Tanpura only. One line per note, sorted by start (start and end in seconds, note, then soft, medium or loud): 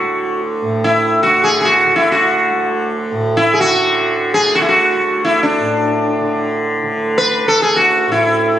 0.00 2.49 D2 medium
0.00 0.61 A2 medium
0.00 1.25 D3 soft
0.62 3.11 A2 soft
1.25 1.86 D3 medium
1.86 3.72 D3 medium
2.49 4.96 D2 medium
3.11 5.58 A2 medium
3.72 4.35 D3 medium
4.35 6.21 D3 medium
4.97 7.44 D2 medium
5.58 8.06 A2 medium
6.21 6.83 D3 medium
6.83 8.59 D3 medium
7.45 8.59 D2 medium
8.06 8.59 A2 medium